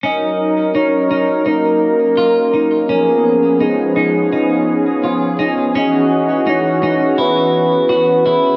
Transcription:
<<
  \new Staff \with { instrumentName = "Soft synth lead" } { \time 4/4 \key fis \major \tempo 4 = 84 dis''4 cis''4 ais'2 | ais'4 gis'4. r4. | dis''4 cis''4 b'2 | }
  \new Staff \with { instrumentName = "Clean electric guitar" } { \time 4/4 \key fis \major cis'4 dis'8 dis'8 dis'4 eis'8 dis'8 | cis'4 dis'8 dis'8 dis'4 eis'8 dis'8 | cis'4 dis'8 dis'8 e'4 fis'8 e'8 | }
  \new Staff \with { instrumentName = "Analog synth pad" } { \time 4/4 \key fis \major << { ais'1 | gis'1~ | gis'1 | } \\ { <fis cis' dis'>1 | <eis b>1 | <e fis'>1 | } >> }
>>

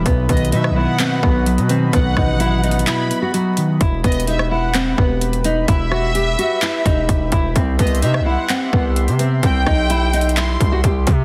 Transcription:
<<
  \new Staff \with { instrumentName = "Violin section" } { \time 4/4 \key e \minor \tempo 4 = 128 r8 dis''8 e''8 fis''4. r4 | fis''2 b''4 r4 | r8 dis''8 e''8 fis''4. r4 | e''1 |
r8 dis''8 e''8 fis''4. r4 | g''2 c'''4 r4 | }
  \new Staff \with { instrumentName = "Analog synth pad" } { \time 4/4 \key e \minor << { <b' dis'' b''>1~ | <b' dis'' b''>1 | <b' b''>1~ | <b' b''>1 |
<e'' c'''>1~ | <e'' c'''>1 | } \\ { fis'1~ | fis'1 | g'1~ | g'1~ |
g'1~ | g'1 | } >> }
  \new Staff \with { instrumentName = "Nylon-string guitar" } { \time 4/4 \key e \minor b8 b8 dis'8 e'8 c'8 b4 c'8 | b8 dis'8 e'8 dis'8 e'8. fis'16 fis'4 | e'8 b8 dis'8 e'8 c'8 b4 dis'8 | e'8 fis'8 g'8 fis'8 e'8 dis'4 e'8 |
c'8 b8 dis'8 e'8 c'8 b4 c'8 | c'8 dis'8 e'8 dis'8 e'8. fis'16 g'4 | }
  \new Staff \with { instrumentName = "Clean electric guitar" } { \clef bass \time 4/4 \key e \minor b,8 dis8 fis8 b8 b'8 b8 fis8 dis8 | b,4 fis8 b8 b'8 b8 fis8 dis8 | r1 | r1 |
r1 | r1 | }
  \new Staff \with { instrumentName = "808-style bass" } { \clef bass \time 4/4 \key e \minor b,,8 b,,8 b,16. b,,16. r8. b,,8. b,8. | b,,8 a,,4. r2 | e,,8 e,,2 e,,4. | e,,4. r4 e,,8 e,,8 e,,8 |
c,8 c,8 c16. c,16. r8. c,8. c8. | c,8 b,,2 c,8 c,8 c8 | }
  \new DrumStaff \with { instrumentName = "Drums" } \drummode { \time 4/4 \tuplet 3/2 { <hh bd>16 r16 r16 <hh bd>16 hh16 hh16 } hh16 ss8. <hc hh>8 bd8 hh16 hh16 hh8 | <hh bd>8 <bd ss>8 \tuplet 3/2 { hh16 r16 r16 hh16 hh16 hh16 } <hc hh>8 hh8 hh8 hh8 | \tuplet 3/2 { <hh bd>16 r16 r16 <hh bd>16 hh16 hh16 } hh16 ss8. <hc hh>8 bd8 hh16 hh16 hh8 | <hh bd>8 ss8 hh8 hh8 <hc hh>8 <hh bd>8 <hh bd>8 <hh bd>8 |
\tuplet 3/2 { <hh bd>16 r16 r16 <hh bd>16 hh16 hh16 } hh16 ss8. <hc hh>8 bd8 hh16 hh16 hh8 | <hh bd>8 <bd ss>8 \tuplet 3/2 { hh16 r16 r16 hh16 hh16 hh16 } <hc hh>8 <hh bd>8 <hh bd>8 <hh bd>8 | }
>>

